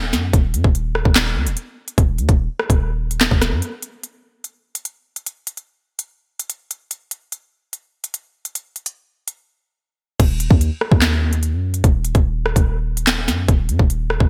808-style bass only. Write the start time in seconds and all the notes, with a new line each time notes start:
Already playing: D#1
0.13 F#2
0.33 D#1
0.54 F#2
0.64 D#1
1.05 D#1
1.36 D#2
1.46 D#1
1.98 D#1
2.18 D#2
2.29 D#1
2.70 D#1
3.31 D#1
3.52 F#2
10.20 D#1
10.51 D#2
10.92 D#2
11.53 F#2
11.84 D#1
12.15 D#1
12.56 D#1
13.28 F#2
13.48 D#1
13.69 F#2
13.79 D#1
14.20 D#1